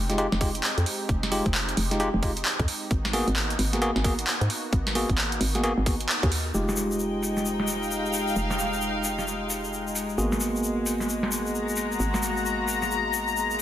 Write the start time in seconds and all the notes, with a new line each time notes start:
Already playing: F1 G#3 C4 D#4 G4
0.10 G#3 D#4 F4 G4, snare, closed hi-hat
0.18 G#3 D#4 F4 G4, closed hi-hat
0.32 F1, snare
0.41 G#3 D#4 F4 G4, kick, open hi-hat
0.55 closed hi-hat
0.64 clap
0.78 F2, closed hi-hat
0.86 open hi-hat
1.09 F1, kick, closed hi-hat
1.23 snare
1.32 G#3 D#4 F4 G4, open hi-hat
1.46 F1, kick, closed hi-hat
1.54 clap
1.69 closed hi-hat
1.77 F1, open hi-hat
1.91 G#3 D#4 F4 G4, snare, closed hi-hat
2.00 G#3 D#4 F4 G4, closed hi-hat
2.14 F1
2.23 G#3 D#4 F4 G4, kick, open hi-hat
2.37 closed hi-hat
2.45 clap
2.59 F2, kick, closed hi-hat
2.68 open hi-hat
2.91 G#1 A#3 B3 F#4, kick, closed hi-hat
3.05 snare
3.13 A#3 B3 F#4 G#4, open hi-hat
3.28 G#1, closed hi-hat
3.36 clap
3.50 closed hi-hat
3.59 G#1, open hi-hat
3.73 A#3 B3 F#4 G#4, snare, closed hi-hat
3.82 A#3 B3 F#4 G#4, closed hi-hat
3.96 G#1, snare
4.04 A#3 B3 F#4 G#4, kick, open hi-hat
4.19 closed hi-hat
4.27 clap
4.41 G#2, closed hi-hat
4.50 open hi-hat
4.73 G#1, kick, closed hi-hat
4.87 snare
4.95 A#3 B3 F#4 G#4, open hi-hat
5.09 G#1, kick, closed hi-hat
5.18 clap
5.32 closed hi-hat
5.41 G#1, open hi-hat
5.55 A#3 B3 F#4 G#4, snare, closed hi-hat
5.64 A#3 B3 F#4 G#4, closed hi-hat
5.78 G#1
5.86 A#3 B3 F#4 G#4, kick, open hi-hat
6.01 closed hi-hat
6.09 clap
6.23 D#2 A#3 B3 F#4 G#4, kick, closed hi-hat
6.32 open hi-hat
6.54 F1 G#3 D#4 F4 G4 C5 D#5, shaker
6.64 G#3
6.69 snare, shaker
6.77 open hi-hat, shaker
6.91 shaker
6.96 G5, shaker
7.23 open hi-hat, shaker
7.37 snare, shaker
7.45 shaker
7.60 snare
7.68 F5, open hi-hat, shaker
7.83 shaker
7.91 shaker
8.06 shaker
8.13 open hi-hat, shaker
8.28 shaker
8.36 F1 F5, shaker
8.50 snare, shaker
8.59 open hi-hat, shaker
8.73 shaker
8.81 shaker
9.04 open hi-hat, shaker
9.19 snare, shaker
9.28 shaker
9.50 open hi-hat, shaker
9.64 shaker
9.73 shaker
9.88 shaker
9.95 open hi-hat, shaker
10.09 shaker
10.18 G#1 A#3 B3 F#4 G#4 A#4 D#5, shaker
10.32 snare, shaker
10.40 open hi-hat, shaker
10.56 shaker
10.63 shaker
10.86 open hi-hat, shaker
11.00 snare, shaker
11.09 shaker
11.21 F#4, snare
11.32 open hi-hat, shaker
11.46 shaker
11.54 A#5, shaker
11.69 shaker
11.76 open hi-hat, shaker
11.92 shaker
12.00 G#1 F5, shaker
12.14 snare, shaker
12.23 open hi-hat, shaker
12.37 shaker
12.46 shaker
12.68 open hi-hat, shaker
12.82 snare, shaker
12.91 shaker
13.14 open hi-hat, shaker
13.28 shaker
13.37 shaker
13.51 shaker